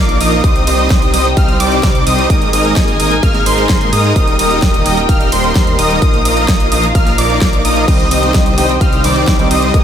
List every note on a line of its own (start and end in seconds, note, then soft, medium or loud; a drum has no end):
0.00 0.18 A#1 loud
0.00 0.18 F3 medium
0.00 0.18 A#3 medium
0.00 0.18 D#4 medium
0.00 9.70 D#4 medium
0.00 0.42 F4 medium
0.00 0.18 A#4 medium
0.00 0.40 A#4 medium
0.00 0.18 D5 loud
0.00 0.42 F5 medium
0.00 0.18 D6 loud
0.09 closed hi-hat soft
0.21 0.42 A#1 loud
0.21 0.41 F3 loud
0.21 0.41 A#3 medium
0.21 0.41 D#4 medium
0.21 0.41 A#4 medium
0.21 0.41 D#5 loud
0.21 0.41 D#6 loud
0.21 open hi-hat loud
0.21 ride medium
0.32 closed hi-hat soft
0.44 0.65 C2 loud
0.44 0.64 G3 loud
0.44 0.64 C4 medium
0.44 2.28 G4 medium
0.44 0.64 C5 medium
0.44 2.28 C5 medium
0.44 2.28 G5 loud
0.44 0.64 D#6 loud
0.44 kick loud
0.44 closed hi-hat medium
0.56 closed hi-hat soft
0.67 0.88 C2 medium
0.67 0.88 G3 medium
0.67 0.88 C4 medium
0.67 0.88 D#4 medium
0.67 0.88 C5 medium
0.67 0.88 D#5 loud
0.67 0.88 D#6 loud
0.67 open hi-hat loud
0.67 ride medium
0.79 closed hi-hat soft
0.90 1.11 C2 loud
0.90 1.11 G3 medium
0.90 1.11 C4 medium
0.90 1.11 D#4 medium
0.90 1.11 C5 medium
0.90 1.11 D#6 medium
0.90 kick loud
0.90 snare loud
0.90 closed hi-hat medium
1.02 closed hi-hat soft
1.14 1.35 C2 medium
1.14 1.28 G3 loud
1.14 1.28 C4 medium
1.14 1.28 D#4 medium
1.14 1.28 C5 medium
1.14 1.28 D#5 loud
1.14 1.28 D#6 loud
1.14 snare soft
1.14 open hi-hat loud
1.14 ride medium
1.25 closed hi-hat soft
1.37 1.58 C2 loud
1.37 1.57 G3 loud
1.37 1.57 C4 medium
1.37 1.57 D#4 medium
1.37 1.57 C5 medium
1.37 1.57 F5 loud
1.37 1.57 F6 loud
1.37 kick loud
1.37 closed hi-hat medium
1.49 closed hi-hat soft
1.60 1.81 C2 medium
1.60 1.80 G3 medium
1.60 1.80 C4 medium
1.60 1.80 D#4 medium
1.60 1.80 C5 medium
1.60 1.80 D5 loud
1.60 1.80 D6 loud
1.60 open hi-hat loud
1.60 ride medium
1.72 closed hi-hat soft
1.83 2.04 C2 loud
1.83 2.04 G3 medium
1.83 2.04 C4 medium
1.83 2.04 D#4 medium
1.83 2.04 C5 medium
1.83 2.04 D6 loud
1.83 kick loud
1.83 snare loud
1.83 closed hi-hat medium
1.95 closed hi-hat soft
2.07 2.28 C2 loud
2.07 2.27 G3 medium
2.07 2.27 C4 medium
2.07 2.27 D#4 medium
2.07 2.27 C5 medium
2.07 2.27 D#5 loud
2.07 2.27 D#6 loud
2.07 open hi-hat loud
2.07 ride medium
2.18 closed hi-hat soft
2.30 2.51 G#1 loud
2.30 2.50 G#3 medium
2.30 2.50 A#3 medium
2.30 2.50 D#4 medium
2.30 4.14 G#4 medium
2.30 7.84 A#4 medium
2.30 2.50 A#4 medium
2.30 2.50 D#5 loud
2.30 4.14 G#5 medium
2.30 2.50 D#6 loud
2.30 kick loud
2.30 closed hi-hat medium
2.42 closed hi-hat soft
2.53 2.74 G#1 medium
2.53 2.74 G#3 loud
2.53 2.74 A#3 medium
2.53 2.74 D#4 medium
2.53 2.74 A#4 medium
2.53 2.74 D#5 loud
2.53 2.74 D#6 loud
2.53 open hi-hat loud
2.53 ride medium
2.65 closed hi-hat soft
2.76 2.97 G#1 loud
2.76 2.97 G#3 medium
2.76 2.97 A#3 medium
2.76 2.97 D#4 medium
2.76 2.97 D#5 medium
2.76 2.97 D#6 medium
2.76 kick loud
2.76 snare loud
2.76 closed hi-hat medium
2.88 closed hi-hat soft
3.00 3.21 G#1 medium
3.00 3.14 G#3 loud
3.00 3.14 A#3 medium
3.00 3.14 D#4 medium
3.00 3.14 A#4 medium
3.00 3.14 D#5 loud
3.00 3.14 D#6 loud
3.00 open hi-hat loud
3.00 ride medium
3.11 closed hi-hat soft
3.23 3.44 G#1 loud
3.23 3.44 G#3 medium
3.23 3.44 A#3 medium
3.23 3.44 D#4 medium
3.23 3.44 A#4 medium
3.23 3.44 F5 loud
3.23 3.44 F6 loud
3.23 kick loud
3.23 closed hi-hat medium
3.34 snare soft
3.34 closed hi-hat soft
3.46 3.67 G#1 loud
3.46 3.66 G#3 medium
3.46 3.66 A#3 medium
3.46 3.66 D#4 medium
3.46 3.66 A#4 medium
3.46 3.66 C5 loud
3.46 3.66 C6 loud
3.46 open hi-hat loud
3.46 ride medium
3.58 closed hi-hat soft
3.69 3.90 G#1 loud
3.69 3.90 G#3 medium
3.69 3.90 A#3 medium
3.69 3.90 D#4 medium
3.69 3.90 A#4 medium
3.69 3.90 C5 loud
3.69 3.90 C6 loud
3.69 kick loud
3.69 snare loud
3.69 closed hi-hat medium
3.81 closed hi-hat soft
3.93 4.14 G#2 loud
3.93 4.13 G#3 loud
3.93 4.13 A#3 medium
3.93 4.13 D#4 medium
3.93 4.13 A#4 medium
3.93 4.13 D#5 loud
3.93 4.13 D#6 loud
3.93 open hi-hat loud
3.93 ride medium
4.04 closed hi-hat soft
4.16 4.37 D#1 loud
4.16 4.36 G3 loud
4.16 4.36 A#3 medium
4.16 4.36 D#4 medium
4.16 6.00 G4 medium
4.16 4.36 A#4 medium
4.16 4.36 D#5 loud
4.16 6.00 G5 loud
4.16 4.36 D#6 loud
4.16 kick loud
4.16 closed hi-hat loud
4.28 closed hi-hat soft
4.39 4.60 D#1 loud
4.39 4.60 G3 loud
4.39 4.60 A#3 medium
4.39 4.60 D#4 medium
4.39 4.60 A#4 medium
4.39 4.60 D#5 loud
4.39 4.60 D#6 loud
4.39 open hi-hat loud
4.39 ride medium
4.51 closed hi-hat soft
4.62 4.83 D#1 loud
4.62 4.83 G3 medium
4.62 4.83 A#3 medium
4.62 4.83 D#4 medium
4.62 4.83 A#4 medium
4.62 4.83 D#5 medium
4.62 4.83 D#6 medium
4.62 kick loud
4.62 snare loud
4.62 closed hi-hat medium
4.74 closed hi-hat soft
4.86 5.07 D#1 loud
4.86 5.00 G3 loud
4.86 5.00 A#3 medium
4.86 5.00 D#4 medium
4.86 5.00 A#4 medium
4.86 5.00 D#5 loud
4.86 5.00 D#6 loud
4.86 snare soft
4.86 open hi-hat loud
4.86 ride medium
4.97 closed hi-hat soft
5.09 5.30 D#1 medium
5.09 5.30 G3 loud
5.09 5.30 A#3 medium
5.09 5.30 D#4 medium
5.09 5.30 A#4 medium
5.09 5.30 F5 loud
5.09 5.30 F6 loud
5.09 kick loud
5.09 closed hi-hat loud
5.21 closed hi-hat soft
5.32 5.53 D#1 medium
5.32 5.52 G3 medium
5.32 5.52 A#3 medium
5.32 5.52 D#4 medium
5.32 5.52 A#4 medium
5.32 5.52 C5 loud
5.32 5.52 C6 loud
5.32 open hi-hat loud
5.32 ride medium
5.44 closed hi-hat soft
5.55 5.77 D#2 loud
5.55 5.76 G3 medium
5.55 5.76 A#3 medium
5.55 5.76 D#4 medium
5.55 5.76 A#4 medium
5.55 5.76 C5 loud
5.55 5.76 C6 loud
5.55 kick loud
5.55 snare loud
5.55 closed hi-hat loud
5.67 closed hi-hat soft
5.79 6.00 D#1 loud
5.79 5.99 G3 loud
5.79 5.99 A#3 medium
5.79 5.99 D#4 medium
5.79 5.99 A#4 medium
5.79 5.99 D#5 loud
5.79 5.99 D#6 loud
5.79 open hi-hat loud
5.79 ride medium
5.90 closed hi-hat soft
6.02 6.23 A#1 loud
6.02 6.22 F3 medium
6.02 6.22 A#3 medium
6.02 6.22 D#4 medium
6.02 7.86 F4 medium
6.02 6.22 A#4 medium
6.02 6.22 D#5 loud
6.02 7.86 F5 medium
6.02 6.22 D#6 loud
6.02 kick loud
6.02 closed hi-hat loud
6.14 closed hi-hat soft
6.25 6.46 A#1 loud
6.25 6.46 F3 loud
6.25 6.46 A#3 medium
6.25 6.46 D#4 medium
6.25 6.46 A#4 medium
6.25 6.46 D#5 loud
6.25 6.46 D#6 loud
6.25 open hi-hat loud
6.25 ride medium
6.37 closed hi-hat soft
6.48 6.70 A#1 loud
6.48 6.69 D#4 medium
6.48 6.69 D#5 medium
6.48 6.69 D#6 medium
6.48 kick loud
6.48 snare loud
6.48 closed hi-hat loud
6.60 closed hi-hat soft
6.72 6.93 A#1 loud
6.72 6.86 F3 medium
6.72 6.86 A#3 medium
6.72 6.86 D#4 medium
6.72 6.86 A#4 medium
6.72 6.86 D#5 loud
6.72 6.86 D#6 loud
6.72 open hi-hat loud
6.72 ride medium
6.83 closed hi-hat soft
6.95 7.16 A#1 medium
6.95 7.16 F3 loud
6.95 7.16 A#3 medium
6.95 7.16 D#4 medium
6.95 7.16 A#4 medium
6.95 7.16 F5 loud
6.95 7.16 F6 loud
6.95 kick loud
6.95 closed hi-hat loud
7.06 snare soft
7.06 closed hi-hat soft
7.18 7.39 A#1 loud
7.18 7.38 F3 medium
7.18 7.38 A#3 medium
7.18 7.38 D#4 medium
7.18 7.38 A#4 medium
7.18 7.38 D5 loud
7.18 7.38 D6 loud
7.18 open hi-hat loud
7.18 ride medium
7.30 closed hi-hat soft
7.41 7.63 A#1 loud
7.41 7.62 F3 medium
7.41 7.62 A#3 medium
7.41 7.62 D#4 medium
7.41 7.62 A#4 medium
7.41 7.62 D6 loud
7.41 kick loud
7.41 snare loud
7.41 closed hi-hat loud
7.53 closed hi-hat soft
7.65 7.86 A#1 loud
7.65 7.85 F3 loud
7.65 7.85 A#3 medium
7.65 7.85 D#4 medium
7.65 7.85 A#4 medium
7.65 7.85 D#5 loud
7.65 7.85 D#6 loud
7.65 open hi-hat loud
7.65 ride medium
7.76 closed hi-hat soft
7.87 8.09 C2 loud
7.87 8.20 D#3 medium
7.87 8.20 G3 medium
7.87 8.08 G3 loud
7.87 8.08 C4 medium
7.87 8.20 C4 medium
7.87 8.08 D#4 medium
7.87 8.20 D#4 medium
7.87 9.72 G4 medium
7.87 9.72 C5 medium
7.87 8.08 D#5 loud
7.87 9.72 G5 loud
7.87 8.08 D#6 loud
7.87 kick loud
7.87 closed hi-hat loud
7.87 crash medium
8.00 closed hi-hat soft
8.11 8.32 C2 medium
8.11 8.32 G3 loud
8.11 8.32 C4 medium
8.11 8.32 D#4 medium
8.11 8.32 C5 medium
8.11 8.32 D#5 loud
8.11 8.32 D#6 loud
8.11 open hi-hat loud
8.11 ride medium
8.22 8.55 D#3 medium
8.22 8.55 G3 medium
8.22 8.55 C4 medium
8.22 8.55 D#4 medium
8.22 closed hi-hat soft
8.34 8.56 C2 loud
8.34 8.55 G3 medium
8.34 kick loud
8.34 snare loud
8.34 closed hi-hat loud
8.46 closed hi-hat soft
8.57 8.79 C2 loud
8.57 8.71 D#3 medium
8.57 8.72 G3 medium
8.57 8.72 G3 loud
8.57 8.72 C4 medium
8.57 8.72 D#4 medium
8.57 8.72 D#4 loud
8.57 8.72 C5 medium
8.57 8.72 D#5 loud
8.57 8.72 D#6 loud
8.57 snare soft
8.57 open hi-hat loud
8.57 ride medium
8.69 closed hi-hat soft
8.81 9.02 C2 loud
8.81 9.02 G3 loud
8.81 9.02 C4 medium
8.81 9.02 D#4 medium
8.81 9.02 C5 medium
8.81 9.02 F5 loud
8.81 9.02 F6 loud
8.81 kick loud
8.81 closed hi-hat loud
8.93 closed hi-hat soft
9.04 9.25 C2 medium
9.04 9.36 D#3 medium
9.04 9.36 G3 medium
9.04 9.24 G3 medium
9.04 9.37 C4 medium
9.04 9.24 C4 medium
9.04 9.24 D#4 medium
9.04 9.37 D#4 loud
9.04 9.24 C5 medium
9.04 9.24 D5 loud
9.04 9.24 D6 loud
9.04 open hi-hat loud
9.04 ride medium
9.16 closed hi-hat soft
9.27 9.49 C2 loud
9.27 9.48 G3 medium
9.27 9.48 C4 medium
9.27 9.48 D#4 medium
9.27 9.48 C5 medium
9.27 9.48 D5 loud
9.27 9.48 D6 loud
9.27 kick loud
9.27 snare loud
9.27 closed hi-hat loud
9.39 9.53 D#3 loud
9.39 9.53 G3 medium
9.39 9.53 C4 medium
9.39 9.53 D#4 loud
9.39 closed hi-hat soft
9.51 9.72 C2 loud
9.51 9.71 G3 loud
9.51 9.71 C4 medium
9.51 9.71 D#4 medium
9.51 9.71 C5 medium
9.51 9.71 D#5 loud
9.51 9.71 D#6 loud
9.51 open hi-hat loud
9.51 ride medium
9.62 closed hi-hat soft
9.74 9.84 G#1 loud
9.74 9.84 G#2 medium
9.74 9.84 D#3 medium
9.74 9.84 G#3 medium
9.74 9.84 G#3 loud
9.74 9.84 A#3 medium
9.74 9.84 D#4 medium
9.74 9.84 G#4 medium
9.74 9.84 A#4 medium
9.74 9.84 D#5 loud
9.74 9.84 G#5 medium
9.74 9.84 D#6 loud
9.74 kick loud
9.74 closed hi-hat medium